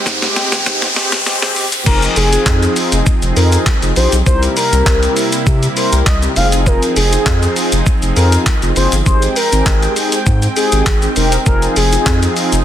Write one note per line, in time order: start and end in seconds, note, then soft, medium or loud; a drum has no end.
0.00 1.84 G#3 medium
0.00 1.82 C4 medium
0.00 1.84 G4 loud
0.00 riser medium
0.06 0.27 G#2 loud
0.06 kick loud
0.06 snare loud
0.06 shaker medium
0.22 0.51 G#3 medium
0.22 0.51 C4 medium
0.22 0.51 G4 loud
0.22 snare loud
0.22 closed hi-hat medium
0.22 shaker medium
0.36 snare loud
0.36 open hi-hat medium
0.36 shaker medium
0.52 0.62 G#1 medium
0.52 snare loud
0.52 closed hi-hat medium
0.52 shaker medium
0.66 0.87 G#2 loud
0.66 0.86 G#3 medium
0.66 0.86 C4 medium
0.66 0.86 G4 loud
0.66 kick loud
0.66 snare loud
0.66 shaker medium
0.82 snare loud
0.82 closed hi-hat medium
0.82 shaker soft
0.96 1.16 G#3 medium
0.96 1.16 C4 medium
0.96 1.16 G4 loud
0.96 snare loud
0.96 open hi-hat medium
0.96 shaker soft
1.12 1.22 G#1 medium
1.12 snare loud
1.12 closed hi-hat medium
1.12 shaker medium
1.26 1.65 G#3 medium
1.26 1.65 C4 medium
1.26 1.65 G4 loud
1.26 snare loud
1.26 shaker medium
1.42 1.52 G#1 medium
1.42 snare loud
1.42 closed hi-hat medium
1.42 shaker soft
1.56 1.68 D#1 loud
1.56 open hi-hat medium
1.56 shaker medium
1.72 1.82 E1 medium
1.72 closed hi-hat medium
1.72 shaker medium
1.86 2.07 F1 loud
1.86 4.24 F3 medium
1.86 2.15 C4 medium
1.86 4.24 C4 medium
1.86 2.15 D#4 medium
1.86 4.24 D#4 medium
1.86 2.15 F4 medium
1.86 4.24 G#4 loud
1.86 2.15 G#4 medium
1.86 2.07 A#4 loud
1.86 kick loud
1.86 crash loud
1.86 shaker medium
2.02 closed hi-hat medium
2.02 shaker medium
2.16 2.37 F1 loud
2.16 2.73 G#4 medium
2.16 open hi-hat medium
2.16 shaker medium
2.32 2.99 C4 medium
2.32 2.99 D#4 medium
2.32 2.99 F4 medium
2.32 2.99 G#4 medium
2.32 closed hi-hat medium
2.32 shaker medium
2.46 2.67 F2 loud
2.46 kick loud
2.46 clap loud
2.46 shaker medium
2.62 closed hi-hat medium
2.62 shaker medium
2.76 open hi-hat medium
2.76 shaker medium
2.92 3.02 F1 medium
2.92 closed hi-hat medium
2.92 shaker medium
3.06 kick loud
3.06 shaker medium
3.22 3.32 F1 loud
3.22 closed hi-hat soft
3.22 shaker soft
3.36 3.57 F2 loud
3.36 3.65 C4 medium
3.36 3.65 D#4 medium
3.36 3.65 F4 medium
3.36 3.65 G#4 medium
3.36 3.58 A#4 medium
3.36 open hi-hat medium
3.36 shaker soft
3.52 closed hi-hat medium
3.52 shaker medium
3.66 kick loud
3.66 clap loud
3.66 shaker medium
3.82 3.92 F1 loud
3.82 3.91 C4 medium
3.82 3.91 D#4 medium
3.82 3.91 F4 medium
3.82 3.91 G#4 medium
3.82 closed hi-hat medium
3.82 shaker medium
3.96 4.08 A#1 loud
3.96 4.16 C4 medium
3.96 4.16 D#4 medium
3.96 4.16 F4 medium
3.96 4.16 G4 medium
3.96 4.08 C5 medium
3.96 open hi-hat medium
3.96 shaker medium
4.12 4.22 B1 medium
4.12 closed hi-hat medium
4.12 shaker medium
4.26 4.48 C2 loud
4.26 6.34 C3 medium
4.26 6.34 G3 medium
4.26 6.34 A#3 medium
4.26 4.55 C4 medium
4.26 6.34 E4 medium
4.26 4.55 E4 medium
4.26 4.55 G4 medium
4.26 4.56 A#4 medium
4.26 4.48 C5 loud
4.26 kick loud
4.26 shaker medium
4.43 closed hi-hat medium
4.43 shaker medium
4.57 5.13 A#4 medium
4.57 open hi-hat medium
4.57 shaker medium
4.72 4.82 C2 loud
4.72 5.39 C4 medium
4.72 5.39 E4 medium
4.72 5.39 G4 medium
4.72 5.39 A#4 medium
4.72 closed hi-hat medium
4.72 shaker medium
4.86 5.07 C2 loud
4.86 kick loud
4.86 clap loud
4.86 shaker medium
5.03 closed hi-hat medium
5.03 shaker medium
5.16 open hi-hat medium
5.16 shaker medium
5.32 closed hi-hat medium
5.32 shaker medium
5.47 5.68 C3 loud
5.47 kick loud
5.47 shaker medium
5.63 closed hi-hat soft
5.63 shaker soft
5.76 6.05 C4 medium
5.76 6.05 E4 medium
5.76 6.05 G4 medium
5.76 6.05 A#4 medium
5.76 5.98 C5 medium
5.76 open hi-hat medium
5.76 shaker soft
5.92 6.02 C2 medium
5.92 closed hi-hat medium
5.92 shaker medium
6.06 6.27 C2 medium
6.06 6.18 D#5 medium
6.06 kick loud
6.06 clap loud
6.06 shaker medium
6.22 6.31 C4 medium
6.22 6.31 E4 medium
6.22 6.31 G4 medium
6.22 6.31 A#4 medium
6.22 closed hi-hat medium
6.22 shaker medium
6.36 6.79 F1 loud
6.36 9.04 F3 medium
6.36 6.96 C4 medium
6.36 9.04 C4 medium
6.36 6.96 D#4 medium
6.36 9.04 D#4 medium
6.36 6.96 F4 medium
6.36 6.96 G#4 loud
6.36 9.04 G#4 medium
6.36 6.48 F5 medium
6.36 open hi-hat medium
6.36 shaker medium
6.52 closed hi-hat medium
6.52 shaker medium
6.66 6.88 A#4 loud
6.66 kick loud
6.66 shaker medium
6.83 closed hi-hat medium
6.83 shaker medium
6.96 7.17 F1 loud
6.96 7.53 G#4 medium
6.96 open hi-hat medium
6.96 shaker medium
7.12 7.79 C4 medium
7.12 7.79 D#4 medium
7.12 7.79 F4 medium
7.12 7.79 G#4 medium
7.12 closed hi-hat medium
7.12 shaker medium
7.26 7.47 F2 loud
7.26 kick loud
7.26 clap loud
7.26 shaker medium
7.43 closed hi-hat medium
7.43 shaker medium
7.56 open hi-hat medium
7.56 shaker medium
7.72 7.82 F1 loud
7.72 closed hi-hat medium
7.72 shaker medium
7.86 kick loud
7.86 shaker medium
8.02 8.12 F1 medium
8.02 closed hi-hat soft
8.02 shaker soft
8.16 8.38 F2 loud
8.16 8.45 C4 medium
8.16 8.45 D#4 medium
8.16 8.45 F4 medium
8.16 8.45 G#4 medium
8.16 8.37 A#4 medium
8.16 open hi-hat medium
8.16 shaker soft
8.32 closed hi-hat medium
8.32 shaker medium
8.46 kick loud
8.46 clap loud
8.46 shaker medium
8.62 8.72 F1 medium
8.62 8.71 C4 medium
8.62 8.71 D#4 medium
8.62 8.71 F4 medium
8.62 8.71 G#4 medium
8.62 closed hi-hat medium
8.62 shaker medium
8.76 8.88 F#1 loud
8.76 8.96 C4 medium
8.76 8.96 D#4 medium
8.76 8.96 F4 medium
8.76 8.96 G#4 medium
8.76 8.88 C5 medium
8.76 open hi-hat medium
8.76 shaker medium
8.92 9.02 G1 loud
8.92 closed hi-hat medium
8.92 shaker medium
9.06 9.27 G#1 loud
9.06 11.44 G#3 medium
9.06 9.35 C4 medium
9.06 12.65 C4 medium
9.06 9.35 D#4 medium
9.06 9.35 G4 medium
9.06 9.35 G#4 medium
9.06 9.28 C5 loud
9.06 11.44 G5 loud
9.06 kick loud
9.06 shaker medium
9.22 closed hi-hat medium
9.22 shaker medium
9.36 9.93 A#4 medium
9.36 open hi-hat medium
9.36 shaker medium
9.52 9.62 G#1 loud
9.52 10.19 C4 medium
9.52 10.19 D#4 medium
9.52 10.19 G4 medium
9.52 10.19 G#4 medium
9.52 closed hi-hat medium
9.52 shaker medium
9.66 9.87 G#1 loud
9.66 kick loud
9.66 clap loud
9.66 shaker medium
9.83 closed hi-hat medium
9.83 shaker medium
9.96 open hi-hat medium
9.96 shaker medium
10.12 closed hi-hat medium
10.12 shaker medium
10.26 10.48 G#2 loud
10.26 kick loud
10.26 shaker medium
10.42 closed hi-hat soft
10.42 shaker soft
10.56 10.85 C4 medium
10.56 10.85 D#4 medium
10.56 10.85 G4 medium
10.56 11.00 G#4 medium
10.56 10.85 G#4 medium
10.56 open hi-hat medium
10.56 shaker soft
10.72 10.82 G#1 medium
10.72 closed hi-hat medium
10.72 shaker medium
10.86 11.07 G#1 medium
10.86 kick loud
10.86 clap loud
10.86 shaker medium
11.02 11.11 C4 medium
11.02 11.11 D#4 medium
11.02 11.11 G4 medium
11.02 11.11 G#4 medium
11.02 closed hi-hat medium
11.02 shaker medium
11.16 11.37 E1 loud
11.16 11.36 C4 loud
11.16 11.36 D#4 medium
11.16 11.36 G4 medium
11.16 11.36 A#4 loud
11.16 open hi-hat medium
11.16 shaker medium
11.32 closed hi-hat medium
11.32 shaker medium
11.46 11.67 F1 loud
11.46 12.65 F3 medium
11.46 11.75 C4 medium
11.46 11.75 D#4 medium
11.46 12.65 D#4 medium
11.46 11.75 F4 medium
11.46 12.65 G#4 loud
11.46 11.75 G#4 medium
11.46 11.67 A#4 loud
11.46 kick loud
11.46 shaker medium
11.62 closed hi-hat medium
11.62 shaker medium
11.76 11.97 F1 loud
11.76 12.33 G#4 medium
11.76 open hi-hat medium
11.76 shaker medium
11.92 12.59 C4 medium
11.92 12.59 D#4 medium
11.92 12.59 F4 medium
11.92 12.59 G#4 medium
11.92 closed hi-hat medium
11.92 shaker medium
12.06 12.27 F2 loud
12.06 kick loud
12.06 clap loud
12.06 shaker medium
12.23 closed hi-hat medium
12.23 shaker medium
12.36 open hi-hat medium
12.36 shaker medium
12.52 12.62 F1 medium
12.52 closed hi-hat medium
12.52 shaker medium